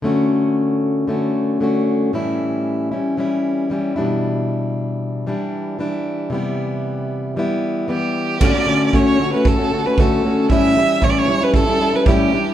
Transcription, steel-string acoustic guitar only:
\new Staff \with { instrumentName = "Steel-string acoustic guitar" } { \time 4/4 \key d \major \tempo 4 = 115 <d a cis' fis'>2 <d a cis' fis'>4 <d a cis' fis'>4 | <a, e g cis' e'>4. <g cis' e'>8 <e g cis' e'>4 <e g cis' e'>8 <b, e g d' e'>8~ | <b, e g d' e'>2 <e g d' e'>4 <e g d' e'>4 | <c e g b e'>2 <e g b e'>4 <e g b e'>4 |
<d a cis' fis'>16 <a cis' fis'>16 <d a cis' fis'>8 <d a cis' fis'>8 <d a cis' fis'>16 <a cis' fis'>8 <a cis' fis'>16 <d a cis' fis'>16 <a cis' fis'>16 <d a cis' fis'>8 <d a cis' fis'>8 | <a, e g cis' e'>8 <e g cis' e'>8 <a, e g cis' e'>8 <e g cis' e'>16 <g cis' e'>8 <g cis' e'>16 <e g cis' e'>16 <g cis' e'>16 <a, e g cis' e'>8 <e g d' e'>8 | }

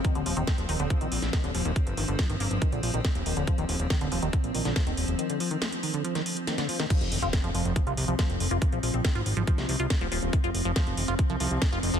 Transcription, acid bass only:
\new Staff \with { instrumentName = "Acid bass" } { \clef bass \time 4/4 \key ees \mixolydian \tempo 4 = 140 ees16 d16 f16 ees16 r8 ees16 d16 f16 ees16 r8 ees16 d16 f16 ees16 | r8 ees16 d16 f16 ees16 r8 ees16 d16 f16 ees16 r8 ees16 d16 | f16 ees16 r8 ees16 d16 f16 ees16 r8 ees16 d16 f16 ees16 r8 | ees16 d16 f16 ees16 r8 ees16 d16 f16 ees16 r8 ees16 d16 f16 ees16 |
f8 ees16 f'16 r16 f16 f8 ees16 f'16 r16 f16 f8 ees16 f'16 | r16 f16 f8 ees16 f'16 r16 f16 f8 ees16 f'16 r16 f16 f8 | ees16 f'16 r16 f16 f8 ees16 f'16 r16 f16 f8 ees16 f'16 r16 f16 | }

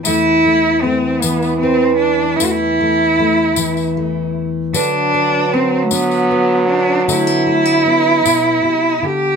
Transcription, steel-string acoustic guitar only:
\new Staff \with { instrumentName = "Steel-string acoustic guitar" } { \time 6/8 \key b \phrygian \tempo 4. = 51 << { a8 a8 a4 b'4 | a8 a8 a4 a4 | b'8 b'8 fis'4 b'4 | a16 b16 a16 b16 b2 | } \\ { <e, e>4. e4. | e,4. e4. | d4. d'4. | d4. b,8 c8 d8 | } >> }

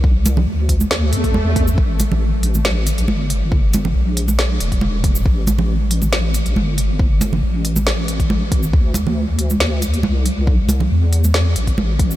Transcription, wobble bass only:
\new Staff \with { instrumentName = "Wobble bass" } { \clef bass \time 4/4 \key a \phrygian \tempo 4 = 138 c,4 d,4. e,4. | a,,2. r4 | r4 bes,,4. e,,4. | a,,2. g,,4~ |
g,,4 a,,2. | d,2. c,4~ | c,4 e,4. a,,4. | }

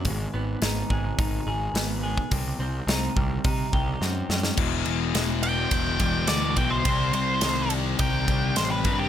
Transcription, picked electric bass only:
\new Staff \with { instrumentName = "Picked electric bass" } { \clef bass \time 4/4 \key e \minor \tempo 4 = 106 gis,,8 gis,,8 gis,,8 gis,,8 gis,,8 gis,,8 gis,,4 | c,8 c,8 c,8 c,8 c8 c,8 fis,8 fis,8 | e,,8 e,,8 e,,4 e,,8 e,,8 d,8 b,,8 | c,8 c,8 c,4 c,8 c,8 a,,8 g,8 | }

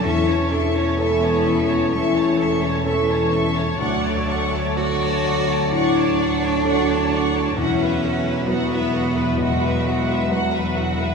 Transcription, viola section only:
\new Staff \with { instrumentName = "Viola section" } { \time 4/4 \key a \major \tempo 4 = 64 a'16 cis''16 a'16 cis''16 a'16 cis''16 a'16 cis''16 a'16 cis''16 a'16 cis''16 a'16 cis''16 a'16 cis''16 | d''16 cis''16 d''16 cis''16 d''16 cis''16 d''16 cis''16 d''16 cis''16 d''16 cis''16 d''16 cis''16 d''16 cis''16 | fis'16 b'16 fis'16 b'16 fis'16 b'16 fis'16 b'16 fis'16 b'16 fis'16 b'16 fis'16 b'16 fis'16 b'16 | }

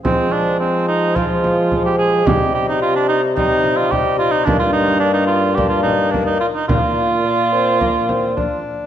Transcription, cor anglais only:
\new Staff \with { instrumentName = "Cor anglais" } { \time 4/4 \key f \dorian \tempo 4 = 108 c'8 d'8 c'8 ees'8 f'4~ f'16 g'16 aes'8 | g'8 g'16 ees'16 f'16 d'16 ees'8 ees'8. f'16 g'8 f'16 ees'16 | d'16 f'16 ees'8 d'16 ees'16 f'8 g'16 f'16 ees'8 d'16 ees'16 f'16 ees'16 | f'2.~ f'8 r8 | }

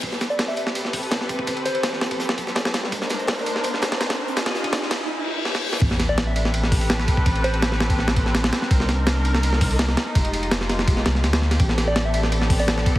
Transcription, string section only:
\new Staff \with { instrumentName = "String section" } { \time 4/4 \key a \minor \tempo 4 = 166 << { <g' a' b'>1~ | <g' a' b'>1 | <ees' bes' c''>1 | <g' aes' ees''>2 r2 |
<g' a' b'>1~ | <g' a' b'>1 | <d' ees' bes'>1 | <f' g'>1 |
<c' a'>1 | } \\ { c'1~ | c'1 | d'1 | f'2 r2 |
c'1~ | c'1~ | c'1 | aes1 |
b1 | } >> }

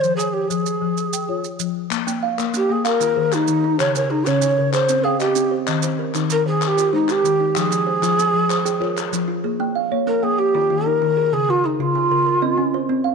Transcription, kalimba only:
<<
  \new Staff \with { instrumentName = "Kalimba" } { \time 12/8 \key bes \dorian \tempo 4. = 128 r1. | r4 f''8 bes'4 g''8 f''4 aes'8 g'4 ees'8 | g'4 aes'8 des'4 bes'8 aes'4 f''8 ees''4 c''8 | ees''4 bes'8 ees'4 c''8 bes'4 aes8 g'4 ees'8 |
g''4 c''8 f'4. c''4 bes'8 aes'4 f'8 | aes'4 f''8 des''4 g''8 g''8 g'8 f'8 ees'4 aes'8 | bes'4 aes'8 f'4 bes'8 bes'8 ees''8 des'8 c''4 f''8 | }
  \new Staff \with { instrumentName = "Kalimba" } { \clef bass \time 12/8 \key bes \dorian r1. | r8 bes4 r8 bes4 r8 ees4 r8 ees4 | r8 des4 r8 des4 r8 c'4 r8 c'4 | r8 ees4 r8 ees4 r8 g'4 r8 ees4 |
r8 f4 r8 f4 r8 aes'4 r8 f4 | r8 bes4 r8 bes4 r8 ees4 r8 ees4 | r8 des4 r8 des4 r8 c'4 r8 c'4 | }
>>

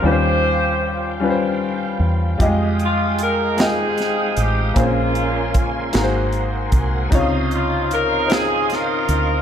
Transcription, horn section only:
\new Staff \with { instrumentName = "Horn section" } { \time 6/8 \key ees \mixolydian \tempo 4. = 51 << { c''4. r4. | r8 f'8 bes'8 aes'4 g'8 | f'4. r4. | r8 f'8 bes'8 aes'8 bes'4 | } \\ { <f' g'>4. r4. | r4. <c' ees'>4. | <aes des'>4. r4. | r2 <ees' f'>4 | } >> }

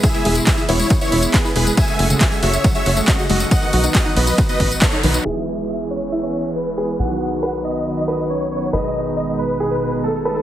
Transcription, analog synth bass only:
\new Staff \with { instrumentName = "Analog synth bass" } { \clef bass \time 4/4 \key e \major \tempo 4 = 138 r8 e,,8 r8 e,,8 r8 e,,8 r8 e,,8 | r8 fis,,8 r8 fis,,8 r8 fis,,8 r8 fis,,8 | r8 b,,8 r8 b,,8 r8 a,,8 r8 b,,8 | e,,1 |
b,,1 | gis,,1 | }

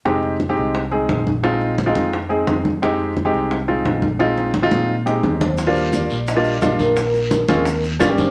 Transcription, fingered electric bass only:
\new Staff \with { instrumentName = "Fingered electric bass" } { \clef bass \time 4/4 \key ees \major \tempo 4 = 174 f,,4. c,4. bes,,4~ | bes,,4. f,4. f,4~ | f,4. c,4. bes,,4~ | bes,,4. bes,4. ees,4~ |
ees,4. bes,,4. bes,,4~ | bes,,4. ees,4. aes,,4 | }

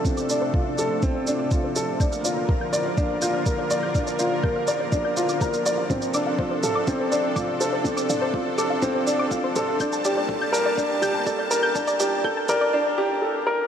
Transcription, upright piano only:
\new Staff \with { instrumentName = "Upright piano" } { \time 4/4 \key d \minor \tempo 4 = 123 c'8 d'8 f'8 a'8 c'8 d'8 f'8 a'8 | d'8 f'8 bes'8 d''8 d'8 f'8 bes'8 d''8 | d'8 f'8 bes'8 d''8 d'8 f'8 bes'8 d''8 | c'8 d'8 f'8 a'8 c'8 d'8 f'8 a'8 |
c'8 d'8 f'8 a'8 c'8 d'8 f'8 a'8 | d'8 g'8 a'8 bes'8 d'8 g'8 a'8 bes'8 | d'8 g'8 a'8 bes'8 d'8 g'8 a'8 bes'8 | }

